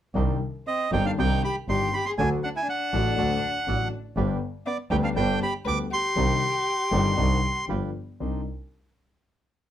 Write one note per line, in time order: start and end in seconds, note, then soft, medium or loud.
0.15 0.37 C2 medium
0.15 0.37 C3 medium
0.15 0.37 D#3 soft
0.15 0.37 C4 soft
0.15 0.37 D4 medium
0.15 0.37 D4 soft
0.15 0.37 D#4 medium
0.15 0.37 G4 medium
0.15 0.37 C5 medium
0.67 0.91 C4 medium
0.67 0.91 D#5 medium
0.92 1.14 G1 medium
0.92 1.14 G2 medium
0.92 1.14 D#3 medium
0.92 1.14 C4 soft
0.92 1.14 D4 medium
0.92 1.14 D4 soft
0.92 1.04 D#4 medium
0.92 1.14 D#4 medium
0.92 1.14 G4 medium
0.92 1.14 C5 medium
0.92 1.06 G5 medium
1.06 1.12 D4 soft
1.06 1.11 F5 medium
1.18 1.39 C2 medium
1.18 1.39 C3 medium
1.18 1.39 D#3 soft
1.18 1.39 C4 soft
1.18 1.39 D4 medium
1.18 1.39 D4 soft
1.18 1.39 D#4 medium
1.18 1.42 D#4 medium
1.18 1.40 G4 medium
1.18 1.39 C5 medium
1.18 1.42 G5 medium
1.44 1.55 G4 medium
1.44 1.56 B5 medium
1.68 1.89 G1 medium
1.68 1.90 G1 soft
1.68 1.90 G2 soft
1.68 1.90 D#3 soft
1.68 1.90 C4 soft
1.68 1.89 D4 soft
1.68 1.90 D4 soft
1.68 1.89 D#4 soft
1.68 1.90 G4 soft
1.68 1.93 G4 medium
1.68 1.90 C5 soft
1.68 1.95 C6 medium
1.94 2.06 G4 medium
1.94 2.05 B5 medium
2.06 2.13 G#4 medium
2.06 2.11 C6 medium
2.18 2.39 D2 medium
2.18 2.39 D3 medium
2.18 2.39 F#3 soft
2.18 2.39 A3 medium
2.18 2.39 D4 medium
2.18 2.30 D4 medium
2.18 2.40 F#4 medium
2.18 2.40 A4 medium
2.18 2.29 G#5 medium
2.44 2.50 D4 medium
2.44 2.49 F#5 medium
2.56 2.67 E4 medium
2.56 2.68 G#5 medium
2.68 3.88 D4 medium
2.68 3.88 F#5 medium
2.93 3.14 A1 medium
2.93 3.14 A2 medium
2.93 3.14 D3 soft
2.93 3.14 F#3 soft
2.93 3.14 A3 soft
2.93 3.13 D4 medium
2.93 3.14 F#4 medium
2.93 3.14 A4 medium
3.17 3.38 D2 medium
3.17 3.38 D3 medium
3.17 3.38 F#3 soft
3.17 3.38 A3 soft
3.17 3.38 D4 medium
3.17 3.38 F#4 medium
3.17 3.39 A4 medium
3.67 3.88 A1 soft
3.67 3.88 A2 soft
3.67 3.88 D3 soft
3.67 3.88 F#3 soft
3.67 3.88 A3 soft
3.67 3.88 D4 soft
3.67 3.88 F#4 soft
3.67 3.88 A4 soft
4.16 4.37 G1 medium
4.16 4.38 G1 medium
4.16 4.37 G2 medium
4.16 4.37 D3 medium
4.16 4.37 G3 medium
4.16 4.38 B3 soft
4.16 4.37 D4 medium
4.16 4.37 G4 medium
4.16 4.38 G4 medium
4.16 4.37 B4 medium
4.66 4.77 B3 medium
4.66 4.77 D5 medium
4.90 5.12 D2 medium
4.90 5.12 D3 medium
4.90 5.12 G3 soft
4.90 5.12 B3 medium
4.90 5.12 D4 medium
4.90 4.96 D#4 medium
4.90 5.12 G4 medium
4.90 5.12 B4 medium
4.90 4.97 G5 medium
5.03 5.09 D4 medium
5.03 5.09 F5 medium
5.15 5.37 G1 medium
5.15 5.37 G2 medium
5.15 5.37 D3 medium
5.15 5.37 G3 medium
5.15 5.37 B3 medium
5.15 5.39 D4 medium
5.15 5.37 D4 medium
5.15 5.37 G4 medium
5.15 5.37 B4 medium
5.15 5.39 G5 medium
5.42 5.53 G4 medium
5.42 5.54 B5 medium
5.65 5.87 D2 medium
5.65 5.87 D2 soft
5.65 5.87 D3 soft
5.65 5.87 G3 soft
5.65 5.87 B3 soft
5.65 5.87 D4 soft
5.65 5.87 G4 soft
5.65 5.76 B4 medium
5.65 5.87 B4 soft
5.65 5.79 D6 medium
5.91 7.64 G4 medium
5.91 7.65 C6 medium
6.16 6.37 C2 medium
6.16 6.38 C3 medium
6.16 6.37 D#3 medium
6.16 6.37 C4 soft
6.16 6.37 D4 medium
6.16 6.38 D4 soft
6.16 6.38 D#4 medium
6.16 6.38 G4 medium
6.16 6.38 C5 medium
6.92 7.13 G1 medium
6.92 7.13 G2 medium
6.92 7.13 D#3 medium
6.92 7.13 C4 soft
6.92 7.13 D4 soft
6.92 7.13 D4 medium
6.92 7.13 D#4 medium
6.92 7.13 G4 medium
6.92 7.13 C5 medium
7.17 7.38 C2 medium
7.17 7.38 C3 medium
7.17 7.38 D#3 medium
7.17 7.38 C4 soft
7.17 7.38 D4 soft
7.17 7.38 D4 medium
7.17 7.39 D#4 medium
7.17 7.38 G4 medium
7.17 7.39 C5 medium
7.68 7.90 G1 soft
7.68 7.90 G1 medium
7.68 7.90 G2 soft
7.68 7.90 F3 soft
7.68 7.90 B3 soft
7.68 7.90 D4 soft
7.68 7.90 F4 soft
7.68 7.90 G4 soft
7.68 7.90 B4 soft
8.20 8.41 C2 soft
8.20 8.41 C4 soft
8.20 8.41 D4 soft
8.20 8.42 D4 soft
8.20 8.41 D#4 soft
8.20 8.41 C5 soft